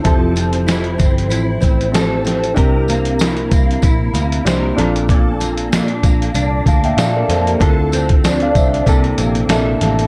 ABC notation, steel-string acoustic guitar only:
X:1
M:4/4
L:1/8
Q:"Swing 16ths" 1/4=95
K:F
V:1 name="Steel-string acoustic guitar"
[F,A] C E C E C A C | [C,B] B, E B, E B, B B,, | [B,,A] B, D B, D B, A B, | [D,A] C D C C, B, A B, |]